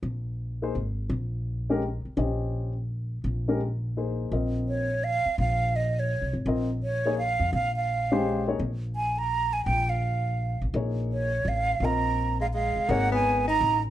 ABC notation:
X:1
M:3/4
L:1/8
Q:"Swing" 1/4=168
K:Bbdor
V:1 name="Flute"
z6 | z6 | z6 | z6 |
z2 d2 f2 | f2 e d2 z | z2 d2 f2 | f f4 z |
z2 a b2 a | g f4 z | z2 d2 f2 | b3 f f2 |
[K:G#m] f g2 a2 z |]
V:2 name="Grand piano"
z3 [B,EAc] z2 | z3 [A,DGB] z2 | [DGce]3 z3 | z [A,DGB] z2 [B,EAc]2 |
[CFBe]3 z3 | z6 | [CFBe] z2 [B,EAd] z2 | z3 [A,DGc]2 [B,EAd] |
z6 | z6 | [B,EAd]3 z3 | [CFBe]3 z3 |
[K:G#m] [DGAc]3 z3 |]
V:3 name="Tenor saxophone"
z6 | z6 | z6 | z6 |
z6 | z6 | z6 | z6 |
z6 | z6 | z6 | z3 A, A,2 |
[K:G#m] A, B,2 D2 z |]
V:4 name="Upright bass" clef=bass
B,,,4 A,,,2 | B,,,4- B,,, z | B,,,6 | B,,,6 |
B,,,4- B,,, z | B,,,4- (3B,,, C,, A,,, | B,,,4- B,,, F,, | B,,,6 |
B,,,6 | B,,,4- B,,, =A,,, | B,,,4 =A,,,2 | B,,,4- B,,, z |
[K:G#m] G,,,4 =A,,,2 |]